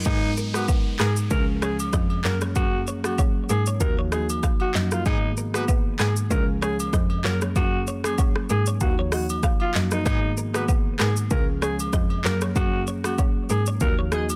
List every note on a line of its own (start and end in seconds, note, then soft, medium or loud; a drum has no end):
0.06 0.82 G#2 loud
0.06 0.19 D#3 loud
0.06 0.24 G#3 loud
0.06 0.19 B3 loud
0.06 0.24 B3 medium
0.06 0.33 D#4 loud
0.06 0.24 D#4 medium
0.06 0.20 G#4 loud
0.06 0.24 A#4 loud
0.06 kick loud
0.06 downlifter medium
0.06 high agogo medium
0.06 shaker medium
0.37 0.51 A#4 medium
0.37 shaker medium
0.54 0.69 G#3 medium
0.54 0.66 G#3 medium
0.54 0.70 B3 medium
0.54 0.66 D#4 medium
0.54 0.70 D#4 medium
0.54 0.66 F#4 medium
0.54 0.70 A#4 medium
0.54 0.66 B4 loud
0.54 cross-stick medium
0.54 high agogo medium
0.54 shaker medium
0.68 0.94 B4 medium
0.68 kick loud
0.68 low woodblock medium
0.68 shaker medium
0.99 1.26 G#2 loud
0.99 1.10 D#3 medium
0.99 1.10 B3 medium
0.99 1.14 G#4 medium
0.99 1.10 A#4 loud
0.99 cross-stick loud
0.99 clap loud
0.99 high agogo medium
0.99 shaker medium
1.16 shaker medium
1.31 1.84 C#2 loud
1.31 1.60 F3 medium
1.31 1.60 G#3 medium
1.31 1.60 C#4 medium
1.31 1.60 G#4 loud
1.31 1.46 A#4 medium
1.31 kick loud
1.31 shaker medium
1.62 1.80 F3 medium
1.62 1.80 G#3 medium
1.62 1.81 C#4 medium
1.62 1.77 G#4 medium
1.62 1.81 G#4 medium
1.62 1.76 C#5 medium
1.62 cross-stick loud
1.62 shaker medium
1.79 high agogo medium
1.79 shaker medium
1.93 2.20 F2 medium
1.93 2.07 D#5 medium
1.93 kick loud
1.93 cross-stick medium
1.93 shaker medium
2.10 high agogo medium
2.24 2.51 F#2 loud
2.24 2.35 C#3 medium
2.24 2.43 F#3 medium
2.24 2.35 A#3 medium
2.24 2.43 A#3 medium
2.24 2.43 C#4 medium
2.24 2.35 F#4 loud
2.24 2.43 G#4 medium
2.24 2.39 A#4 medium
2.24 2.39 C#5 medium
2.24 clap loud
2.24 shaker medium
2.41 2.53 C#5 medium
2.41 cross-stick medium
2.41 shaker medium
2.56 3.31 F#2 loud
2.56 2.74 F#3 loud
2.56 2.74 A#3 medium
2.56 2.74 C#4 medium
2.56 2.82 F#4 loud
2.56 2.74 G#4 loud
2.56 2.70 A#4 loud
2.56 kick loud
2.56 high agogo medium
2.56 shaker medium
2.87 3.01 C#5 medium
2.87 shaker medium
3.04 3.19 F#3 medium
3.04 3.20 A#3 medium
3.04 3.20 C#4 medium
3.04 3.16 F#4 medium
3.04 3.20 G#4 medium
3.04 cross-stick loud
3.04 high agogo medium
3.04 shaker medium
3.18 3.32 C#5 medium
3.18 kick loud
3.18 low woodblock medium
3.18 shaker medium
3.49 3.76 G#2 medium
3.49 3.64 G#4 medium
3.49 3.64 A#4 medium
3.49 high agogo medium
3.49 shaker medium
3.66 3.78 C#5 medium
3.66 shaker medium
3.81 4.34 D#2 loud
3.81 4.10 F3 loud
3.81 4.10 A#3 medium
3.81 4.10 D#4 medium
3.81 4.10 F#4 loud
3.81 3.96 A#4 medium
3.81 kick loud
3.81 shaker medium
3.99 4.10 C#5 medium
4.12 4.30 F3 medium
4.12 4.30 A#3 medium
4.12 4.30 D#4 medium
4.12 4.30 F#4 medium
4.12 4.27 G#4 medium
4.12 4.26 D#5 medium
4.12 cross-stick loud
4.12 shaker medium
4.30 high agogo medium
4.30 shaker medium
4.43 4.57 F5 medium
4.43 kick loud
4.43 cross-stick medium
4.43 shaker medium
4.60 4.73 F#4 medium
4.60 high agogo medium
4.75 5.01 F#2 medium
4.75 4.93 F3 medium
4.75 4.93 A#3 medium
4.75 4.93 D#4 medium
4.75 4.93 F#4 medium
4.75 4.89 D#5 medium
4.75 clap loud
4.75 shaker medium
4.91 5.04 F4 medium
4.91 5.03 A#4 medium
4.91 cross-stick medium
4.91 shaker medium
5.06 5.82 G#2 loud
5.06 5.20 D#3 loud
5.06 5.24 D#3 loud
5.06 5.24 A#3 medium
5.06 5.20 B3 loud
5.06 5.24 B3 medium
5.06 5.33 D#4 loud
5.06 5.20 G#4 loud
5.06 5.24 G#4 loud
5.06 5.20 G#4 loud
5.06 kick loud
5.06 high agogo medium
5.06 shaker medium
5.37 5.51 A#4 medium
5.37 shaker medium
5.54 5.69 D#3 medium
5.54 5.65 G#3 medium
5.54 5.70 A#3 medium
5.54 5.70 B3 medium
5.54 5.65 D#4 medium
5.54 5.66 F#4 medium
5.54 5.70 G#4 medium
5.54 5.65 B4 loud
5.54 cross-stick medium
5.54 high agogo medium
5.54 shaker medium
5.68 5.94 B4 medium
5.68 kick loud
5.68 low woodblock medium
5.68 shaker medium
5.99 6.26 G#2 loud
5.99 6.10 D#3 medium
5.99 6.10 B3 medium
5.99 6.10 G#4 loud
5.99 6.14 G#4 medium
5.99 cross-stick loud
5.99 clap loud
5.99 high agogo medium
5.99 shaker medium
6.16 shaker medium
6.31 6.84 C#2 loud
6.31 6.60 F3 loud
6.31 6.60 G#3 medium
6.31 6.60 C#4 medium
6.31 6.60 G#4 loud
6.31 6.46 A#4 medium
6.31 kick loud
6.31 shaker medium
6.62 6.80 F3 medium
6.62 6.80 G#3 medium
6.62 6.80 C#4 medium
6.62 6.77 G#4 medium
6.62 6.80 G#4 medium
6.62 6.76 C#5 medium
6.62 cross-stick loud
6.62 shaker medium
6.80 high agogo medium
6.80 shaker medium
6.93 7.20 F2 loud
6.93 7.07 D#5 medium
6.93 kick loud
6.93 cross-stick medium
6.93 shaker medium
7.10 high agogo medium
7.24 7.51 F#2 loud
7.24 7.35 C#3 medium
7.24 7.43 F#3 medium
7.24 7.43 A#3 medium
7.24 7.35 A#3 medium
7.24 7.43 C#4 medium
7.24 7.35 F#4 loud
7.24 7.43 G#4 medium
7.24 7.39 A#4 medium
7.24 7.39 C#5 medium
7.24 clap loud
7.24 shaker medium
7.41 7.53 C#5 medium
7.41 cross-stick medium
7.41 shaker medium
7.56 8.32 F#2 loud
7.56 7.74 F#3 loud
7.56 7.74 A#3 medium
7.56 7.74 C#4 medium
7.56 7.83 F#4 loud
7.56 7.74 G#4 loud
7.56 7.70 A#4 loud
7.56 kick loud
7.56 high agogo medium
7.56 shaker medium
7.87 8.01 C#5 medium
7.87 shaker medium
8.04 8.19 F#3 medium
8.04 8.20 A#3 medium
8.04 8.20 C#4 medium
8.04 8.16 G#4 medium
8.04 8.20 G#4 medium
8.04 cross-stick loud
8.04 high agogo medium
8.04 shaker medium
8.18 8.33 C#5 medium
8.18 kick loud
8.18 low woodblock medium
8.18 shaker medium
8.36 cross-stick medium
8.49 8.77 G#2 medium
8.49 8.65 G#4 medium
8.49 8.64 A#4 medium
8.49 high agogo medium
8.49 shaker medium
8.66 8.78 C#5 medium
8.66 shaker medium
8.81 9.34 D#2 loud
8.81 9.10 F3 loud
8.81 9.10 A#3 medium
8.81 9.10 D#4 medium
8.81 8.96 F#4 medium
8.81 9.10 F#4 loud
8.81 kick loud
8.81 shaker medium
8.99 9.10 C#5 medium
9.12 9.30 F3 medium
9.12 9.30 A#3 medium
9.12 9.31 D#4 medium
9.12 9.27 F#4 medium
9.12 9.31 F#4 medium
9.12 9.26 D#5 medium
9.12 cross-stick loud
9.12 open hi-hat medium
9.12 shaker medium
9.29 high agogo medium
9.29 shaker medium
9.43 9.57 F5 medium
9.43 kick loud
9.43 cross-stick loud
9.43 shaker medium
9.60 9.73 F4 medium
9.60 high agogo medium
9.75 10.02 F#2 medium
9.75 9.93 F3 medium
9.75 9.93 A#3 medium
9.75 9.93 D#4 medium
9.75 9.93 F#4 medium
9.75 9.89 D#5 medium
9.75 clap loud
9.75 shaker medium
9.91 10.04 D#4 medium
9.91 10.04 A#4 medium
9.91 cross-stick loud
9.91 shaker medium
10.06 10.82 G#2 loud
10.06 10.19 D#3 loud
10.06 10.24 D#3 loud
10.06 10.24 A#3 medium
10.06 10.19 B3 loud
10.06 10.24 B3 medium
10.06 10.33 D#4 loud
10.06 10.19 G#4 loud
10.06 10.24 G#4 loud
10.06 10.20 G#4 medium
10.06 kick loud
10.06 high agogo medium
10.06 shaker medium
10.37 10.51 A#4 medium
10.37 shaker medium
10.54 10.70 D#3 medium
10.54 10.65 G#3 medium
10.54 10.70 A#3 medium
10.54 10.70 B3 medium
10.54 10.65 D#4 medium
10.54 10.67 F#4 medium
10.54 10.70 G#4 medium
10.54 10.65 B4 loud
10.54 cross-stick loud
10.54 high agogo medium
10.54 shaker medium
10.68 10.94 B4 medium
10.68 kick loud
10.68 low woodblock medium
10.68 shaker medium
10.99 11.26 G#2 loud
10.99 11.10 D#3 medium
10.99 11.10 B3 medium
10.99 11.14 G#4 medium
10.99 11.10 A#4 loud
10.99 cross-stick loud
10.99 clap loud
10.99 high agogo medium
10.99 shaker medium
11.16 shaker medium
11.31 11.84 C#2 loud
11.31 11.60 F3 medium
11.31 11.60 G#3 medium
11.31 11.60 C#4 medium
11.31 11.60 G#4 loud
11.31 11.46 A#4 medium
11.31 kick loud
11.31 shaker medium
11.62 11.80 F3 medium
11.62 11.80 G#3 medium
11.62 11.80 C#4 medium
11.62 11.77 G#4 medium
11.62 11.81 G#4 medium
11.62 11.76 C#5 medium
11.62 cross-stick loud
11.62 shaker medium
11.79 high agogo medium
11.79 shaker medium
11.93 12.20 F2 loud
11.93 12.07 D#5 medium
11.93 kick loud
11.93 cross-stick loud
11.93 shaker medium
12.10 high agogo medium
12.24 12.52 F#2 loud
12.24 12.35 C#3 loud
12.24 12.43 F#3 medium
12.24 12.35 A#3 medium
12.24 12.43 A#3 medium
12.24 12.43 C#4 medium
12.24 12.35 F#4 loud
12.24 12.43 G#4 medium
12.24 12.39 A#4 medium
12.24 12.39 C#5 medium
12.24 clap loud
12.24 shaker medium
12.41 12.53 C#5 medium
12.41 cross-stick loud
12.41 shaker medium
12.56 13.32 F#2 loud
12.56 12.74 F#3 loud
12.56 12.74 A#3 medium
12.56 12.74 C#4 medium
12.56 12.82 F#4 loud
12.56 12.74 G#4 loud
12.56 12.70 A#4 loud
12.56 kick loud
12.56 high agogo medium
12.56 shaker medium
12.87 13.01 C#5 medium
12.87 shaker medium
13.04 13.20 F#3 medium
13.04 13.20 A#3 medium
13.04 13.20 C#4 medium
13.04 13.17 F#4 medium
13.04 13.20 G#4 medium
13.04 cross-stick loud
13.04 high agogo medium
13.04 shaker medium
13.18 13.32 C#5 medium
13.18 kick loud
13.18 low woodblock medium
13.18 shaker medium
13.49 13.76 G#2 medium
13.49 13.64 G#4 medium
13.49 13.64 A#4 medium
13.49 high agogo medium
13.49 shaker medium
13.66 13.79 C#5 medium
13.66 shaker medium
13.80 14.34 D#2 loud
13.80 14.10 F3 loud
13.80 14.10 A#3 medium
13.80 14.10 D#4 medium
13.80 14.10 F#4 loud
13.80 13.96 A#4 medium
13.80 kick loud
13.80 shaker medium
13.99 14.13 C#5 medium
14.12 14.30 F3 medium
14.12 14.30 A#3 medium
14.12 14.31 D#4 medium
14.12 14.31 F#4 medium
14.12 14.27 G#4 medium
14.12 14.26 D#5 medium
14.12 cross-stick loud
14.12 shaker medium
14.29 high agogo medium
14.29 shaker medium